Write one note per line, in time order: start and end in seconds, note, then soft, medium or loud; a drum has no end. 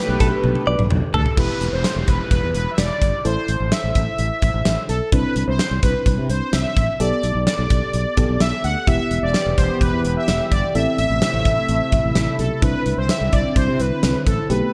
0.00 1.36 B2 medium
0.00 1.36 A3 medium
0.00 1.34 D4 medium
0.00 1.34 G4 medium
0.00 1.36 G4 loud
0.00 1.34 A4 medium
0.00 0.86 B4 medium
0.00 1.34 B4 medium
0.08 0.19 B1 loud
0.20 0.31 B1 loud
0.20 0.27 A4 medium
0.20 kick medium
0.20 closed hi-hat medium
0.44 0.54 B1 loud
0.44 high tom medium
0.55 high tom medium
0.67 0.77 B1 medium
0.67 0.81 D5 medium
0.79 0.89 B1 loud
0.79 mid tom medium
0.90 1.01 B1 loud
0.90 mid tom medium
1.14 1.24 D2 loud
1.14 1.38 A4 medium
1.14 1.21 A4 medium
1.14 floor tom loud
1.26 floor tom loud
1.37 1.48 E1 loud
1.37 3.21 E4 medium
1.37 3.21 G4 medium
1.37 1.74 B4 medium
1.37 kick loud
1.37 crash medium
1.37 downlifter medium
1.61 1.71 E1 medium
1.61 closed hi-hat medium
1.73 1.83 E1 medium
1.73 2.05 C5 medium
1.84 snare loud
1.84 closed hi-hat medium
1.96 2.06 E1 medium
2.08 2.18 E1 loud
2.08 2.30 B4 medium
2.08 kick medium
2.08 closed hi-hat medium
2.31 2.41 E1 loud
2.31 2.53 B4 medium
2.31 kick medium
2.31 closed hi-hat medium
2.43 2.53 E2 medium
2.55 2.65 E1 loud
2.55 2.72 B4 medium
2.55 closed hi-hat medium
2.71 2.78 E5 medium
2.78 2.88 E1 medium
2.78 3.26 D5 loud
2.78 snare loud
2.78 closed hi-hat medium
3.02 3.12 G1 medium
3.02 kick medium
3.02 closed hi-hat medium
3.25 3.35 A1 loud
3.25 5.09 E4 medium
3.25 5.09 A4 medium
3.25 5.09 C5 medium
3.25 3.73 C5 loud
3.25 closed hi-hat medium
3.48 3.59 A1 medium
3.48 closed hi-hat medium
3.60 3.70 A1 medium
3.72 4.85 E5 loud
3.72 snare loud
3.72 closed hi-hat medium
3.84 3.94 A1 medium
3.95 4.06 A1 loud
3.95 kick medium
3.95 closed hi-hat medium
4.18 4.29 A1 loud
4.18 closed hi-hat medium
4.42 4.53 A1 medium
4.42 kick medium
4.42 closed hi-hat medium
4.54 4.64 A1 medium
4.65 4.76 A1 medium
4.65 snare loud
4.65 closed hi-hat medium
4.89 4.99 B1 medium
4.89 5.13 A4 medium
4.89 closed hi-hat medium
5.12 5.23 C2 loud
5.12 6.96 C4 medium
5.12 6.96 D4 medium
5.12 6.96 E4 medium
5.12 5.45 B4 loud
5.12 kick loud
5.12 closed hi-hat medium
5.36 5.46 C2 loud
5.36 closed hi-hat medium
5.47 5.58 C2 loud
5.47 5.80 C5 loud
5.59 snare loud
5.59 closed hi-hat medium
5.71 5.81 C2 medium
5.83 5.93 C2 medium
5.83 6.26 B4 loud
5.83 kick medium
5.83 closed hi-hat medium
6.06 6.16 C2 loud
6.06 kick medium
6.06 closed hi-hat medium
6.18 6.28 C3 loud
6.29 6.40 C2 loud
6.29 6.54 C5 medium
6.29 closed hi-hat medium
6.53 6.63 C2 loud
6.53 7.01 E5 loud
6.53 snare loud
6.53 closed hi-hat medium
6.77 6.87 A1 medium
6.77 kick medium
6.77 closed hi-hat medium
7.00 7.10 B1 loud
7.00 8.15 B3 medium
7.00 8.15 G4 medium
7.00 8.15 A4 medium
7.00 7.44 D5 loud
7.00 closed hi-hat medium
7.23 7.34 B1 medium
7.23 closed hi-hat medium
7.35 7.45 B1 medium
7.47 8.43 D5 loud
7.47 snare loud
7.47 closed hi-hat medium
7.59 7.69 B1 medium
7.70 7.81 B1 medium
7.70 kick medium
7.70 closed hi-hat medium
7.93 8.04 B1 loud
7.93 closed hi-hat medium
8.17 8.28 B1 medium
8.17 8.86 B3 medium
8.17 8.86 G4 medium
8.17 8.87 A4 medium
8.17 kick medium
8.17 closed hi-hat medium
8.29 8.39 B1 medium
8.40 8.51 B1 medium
8.40 8.62 E5 loud
8.40 snare loud
8.40 closed hi-hat medium
8.64 8.74 D2 medium
8.64 8.86 F#5 loud
8.64 closed hi-hat medium
8.87 8.98 E1 loud
8.87 10.73 E3 medium
8.87 10.71 B3 medium
8.87 10.73 B3 medium
8.87 10.71 E4 medium
8.87 10.71 G4 medium
8.87 10.73 G4 medium
8.87 9.24 E5 loud
8.87 kick loud
8.87 closed hi-hat medium
9.11 9.21 E1 medium
9.11 closed hi-hat medium
9.23 9.33 E1 medium
9.23 9.59 D5 loud
9.34 snare loud
9.34 closed hi-hat medium
9.46 9.56 E1 medium
9.58 9.68 E1 loud
9.58 9.80 C5 loud
9.58 kick medium
9.58 closed hi-hat medium
9.81 9.91 E1 loud
9.81 10.17 B4 loud
9.81 kick medium
9.81 closed hi-hat medium
9.93 10.03 E2 medium
10.05 10.15 E1 medium
10.05 closed hi-hat medium
10.16 10.53 E5 loud
10.28 10.38 E1 medium
10.28 snare loud
10.28 closed hi-hat medium
10.52 10.62 G1 medium
10.52 10.76 D5 medium
10.52 kick medium
10.52 closed hi-hat medium
10.75 10.85 A1 loud
10.75 12.61 C3 medium
10.75 12.61 A3 medium
10.75 12.59 C4 medium
10.75 12.59 E4 medium
10.75 14.46 E4 medium
10.75 12.59 A4 medium
10.75 10.97 E5 loud
10.75 closed hi-hat medium
10.98 11.09 A1 loud
10.98 12.35 E5 loud
10.98 closed hi-hat medium
11.10 11.20 A1 loud
11.22 snare loud
11.22 closed hi-hat medium
11.34 11.44 A1 medium
11.45 11.56 A1 loud
11.45 kick medium
11.45 closed hi-hat medium
11.69 11.79 A1 loud
11.69 closed hi-hat medium
11.92 12.03 A1 medium
11.92 kick medium
11.92 closed hi-hat medium
12.04 12.14 A1 medium
12.15 12.26 A1 loud
12.15 snare loud
12.15 closed hi-hat medium
12.39 12.49 B1 medium
12.39 12.63 A4 medium
12.39 closed hi-hat medium
12.62 12.73 C2 loud
12.62 14.48 D3 medium
12.62 14.48 C4 medium
12.62 14.46 C4 medium
12.62 14.46 D4 medium
12.62 14.46 E4 medium
12.62 12.99 B4 loud
12.62 kick loud
12.62 closed hi-hat medium
12.86 12.96 C2 loud
12.86 closed hi-hat medium
12.97 13.08 C2 loud
12.97 13.10 C5 medium
13.09 13.34 E5 loud
13.09 snare loud
13.09 closed hi-hat medium
13.21 13.31 C2 medium
13.33 13.43 C2 loud
13.33 13.55 D5 loud
13.33 kick medium
13.33 closed hi-hat medium
13.56 13.66 C2 loud
13.56 13.80 C5 medium
13.56 kick medium
13.56 closed hi-hat medium
13.68 13.78 C3 loud
13.80 13.90 C2 loud
13.80 14.28 B4 medium
13.80 closed hi-hat medium
14.03 14.13 C2 loud
14.03 snare loud
14.03 closed hi-hat medium
14.27 14.37 A1 medium
14.27 14.48 A4 medium
14.27 kick medium
14.27 closed hi-hat medium
14.50 14.60 B1 loud
14.50 14.73 B2 medium
14.50 14.73 A3 medium
14.50 14.73 B3 medium
14.50 14.73 G4 medium
14.50 14.73 B4 medium
14.50 closed hi-hat medium